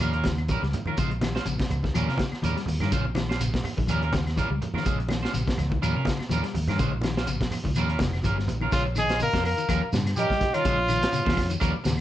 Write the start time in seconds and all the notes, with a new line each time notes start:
0.00 D#2 F3 G3 C#4 F4 A#4, closed hi-hat, claves, shekere
0.13 C#4 F4 A#4, closed hi-hat
0.24 C#3, muted clean electric guitar stroke, kick, snare, closed hi-hat, high conga, shekere
0.38 closed hi-hat, claves
0.48 F3 G3 C#4 A#4, kick, closed hi-hat, high conga, shekere
0.62 C#2 G3, muted clean electric guitar stroke, snare
0.73 muted clean electric guitar stroke, closed hi-hat, high conga, low conga, shekere
0.85 D#3 C#4 F4 A#4, muted fingered electric bass stroke, high conga, low conga, claves
0.97 A#1 C#3 G#3 F4 C5, muted clean electric guitar stroke, kick, closed hi-hat, shekere
1.11 muted clean electric guitar stroke, closed hi-hat
1.21 D#3, muted clean electric guitar stroke, snare, closed hi-hat, high conga, claves, shekere
1.35 C#4 F4 C5, snare
1.45 A#1 C#3, muted clean electric guitar stroke, closed hi-hat, shekere
1.58 C3, kick, snare, closed hi-hat, high conga
1.69 C#2, muted clean electric guitar stroke, closed hi-hat, low conga, claves, shekere
1.83 D#3, muted clean electric guitar stroke, kick, snare, high conga
1.94 D#2 F3 G3 C#4 F4 A#4, closed hi-hat, claves, shekere
2.08 C3 C#4 F4 A#4, snare
2.18 C#3, muted clean electric guitar stroke, kick, snare, closed hi-hat, high conga, shekere
2.32 muted fingered electric bass stroke, snare, claves
2.42 D#2 F3 G3 C#4 F4 A#4, closed hi-hat, high conga, shekere
2.57 G3, muted clean electric guitar stroke, snare, closed hi-hat
2.66 D#2, muted clean electric guitar stroke, open hi-hat, high conga, low conga, shekere
2.80 G2 D#3 C#4 F4 A#4, snare, closed hi-hat, high conga, low conga, claves
2.91 A#1 C#3 C#4 F4 C5, muted clean electric guitar stroke, kick, closed hi-hat, shekere
3.05 muted clean electric guitar stroke, high conga
3.15 D#3, muted clean electric guitar stroke, snare, closed hi-hat, high conga, claves, shekere
3.29 C#4 F4 C5, snare
3.40 C#3, muted clean electric guitar stroke, closed hi-hat, shekere
3.54 C3, kick, snare, closed hi-hat
3.64 muted clean electric guitar stroke, open hi-hat, low conga, claves, shekere
3.77 A#1 D#3, muted clean electric guitar stroke, kick, high conga
3.87 D#2 F3 G3 C#4 F4 A#4, closed hi-hat, claves, shekere
4.02 C#4 F4 A#4, closed hi-hat
4.13 C#3, muted clean electric guitar stroke, kick, snare, closed hi-hat, high conga, shekere
4.27 snare, closed hi-hat, claves
4.36 F3 G3 C#4 F4 A#4, kick, closed hi-hat, high conga, shekere
4.50 C#2 G3, muted clean electric guitar stroke
4.61 muted clean electric guitar stroke, closed hi-hat, low conga, shekere
4.74 D#3 C#4 F4 A#4, muted fingered electric bass stroke, snare, high conga, low conga, claves
4.85 A#1 C#3 G#3 C#4 F4, muted clean electric guitar stroke, kick, closed hi-hat, shekere
4.99 muted clean electric guitar stroke, closed hi-hat
5.09 D#3, muted clean electric guitar stroke, snare, closed hi-hat, high conga, claves, shekere
5.23 C#4 F4 C5, snare
5.33 A#1 C#3, muted clean electric guitar stroke, closed hi-hat, shekere
5.47 C3, kick, snare, closed hi-hat, high conga
5.57 C#2, muted clean electric guitar stroke, snare, closed hi-hat, low conga, claves, shekere
5.70 D#3, muted clean electric guitar stroke, kick, high conga
5.82 D#2 F3 G3 C#4 F4 A#4, closed hi-hat, claves, shekere
5.96 C3 C#4 F4 A#4
6.05 C#3, muted clean electric guitar stroke, kick, snare, closed hi-hat, high conga, shekere
6.19 muted fingered electric bass stroke, snare, claves
6.29 D#2 F3 G3 C#4 F4 A#4, closed hi-hat, high conga, shekere
6.43 G3, muted clean electric guitar stroke, snare, closed hi-hat
6.54 D#2, muted clean electric guitar stroke, open hi-hat, low conga, shekere
6.68 G2 D#3 C#4 F4 A#4, snare, closed hi-hat, high conga, low conga, claves
6.79 A#1 C#3 G#3 C#4 F4 C5, kick, closed hi-hat, shekere
6.91 muted clean electric guitar stroke, high conga
7.01 D#3, muted clean electric guitar stroke, snare, closed hi-hat, high conga, claves, shekere
7.17 C#4 F4 C5, snare
7.27 C#3, muted clean electric guitar stroke, closed hi-hat, shekere
7.40 C3, kick, snare, closed hi-hat
7.51 muted clean electric guitar stroke, open hi-hat, low conga, claves, shekere
7.64 C#2 D#3, muted clean electric guitar stroke, kick, high conga
7.75 D#2 F3 G3 C#4 F4 A#4, closed hi-hat, claves, shekere
7.89 C#4 F4 A#4, closed hi-hat
7.99 F1 C#3, muted clean electric guitar stroke, kick, snare, closed hi-hat, high conga, shekere
8.13 snare, closed hi-hat, claves
8.23 G1 F3 C#4 F4 A#4, muted clean electric guitar stroke, kick, closed hi-hat, high conga, shekere
8.37 G3, muted clean electric guitar stroke, snare
8.48 A#1, muted clean electric guitar stroke, closed hi-hat, high conga, low conga, shekere
8.61 D#3 C#4 F4 A#4, high conga, claves
8.72 A#1 C#3 G#3 C#4 F4 C5 C#5, kick, snare, closed hi-hat, shekere
8.86 muted clean electric guitar stroke
8.96 D#3 G#4 D#5, muted clean electric guitar stroke, snare, closed hi-hat, claves, shekere
9.09 C#4 F4 C5, snare, closed hi-hat, shekere
9.20 C#3 A#4 F5, muted clean electric guitar stroke, closed hi-hat, shekere
9.33 F2 C3 C#4 F4 C5, kick, snare
9.45 A#4, open hi-hat, claves, shekere
9.49 F5
9.57 D#3, muted clean electric guitar stroke, closed hi-hat, shekere
9.68 D#2 F3 G3 C#4 F4 A#4, kick, closed hi-hat, claves, shekere
9.83 muted clean electric guitar stroke
9.93 G2 C#3, muted clean electric guitar stroke, snare, closed hi-hat, shekere
10.06 snare, closed hi-hat, claves, shekere
10.16 F3 G3 C#4 G4 A#4 D#5, closed hi-hat, shekere
10.30 G3, muted clean electric guitar stroke, kick, snare, shekere
10.41 muted clean electric guitar stroke, kick, snare, closed hi-hat
10.53 D#3 C#4 F4 A#4 C#5, closed hi-hat, claves
10.64 A#1 C#3 G#3 C#4 F4 C5, kick, closed hi-hat, shekere
10.78 muted clean electric guitar stroke
10.89 D#3, muted clean electric guitar stroke, snare, closed hi-hat, claves, shekere
11.01 C#4 F4 C5, snare, closed hi-hat, shekere
11.13 C#3, muted fingered electric bass stroke, muted clean electric guitar stroke, closed hi-hat, shekere
11.25 F2 C3 C#4 F4 C5, kick, snare
11.36 kick, snare, open hi-hat, claves, shekere
11.50 D#3, muted clean electric guitar stroke, closed hi-hat, shekere
11.60 D#2 F3 G3 C#4 F4 A#4, kick, closed hi-hat, claves, shekere
11.73 muted clean electric guitar stroke
11.84 D#2 C#3, muted clean electric guitar stroke, snare, closed hi-hat, shekere